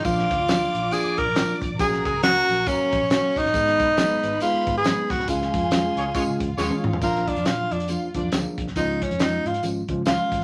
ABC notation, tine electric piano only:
X:1
M:4/4
L:1/8
Q:"Swing" 1/4=138
K:A#phr
V:1 name="Tine electric piano"
[E,A,=DE] z [E,A,DE] z [E,A,DE] z [E,A,DE] z | [F,A,CF] z [F,A,CF] z [F,A,CF] z [F,A,CF] z | [G,B,DG] z [G,B,DG] z [G,B,DG] z [G,B,DG] z | [G,CEG] z [G,CEG] z [G,CEG] z [G,CEG] z |
[E,A,=DE] z [E,A,DE] z [E,A,DE] [E,A,DE] [E,A,DG] z | [E,G,CE] z [E,G,CE] z [E,G,CE] [E,G,CE] [E,G,CE] z |]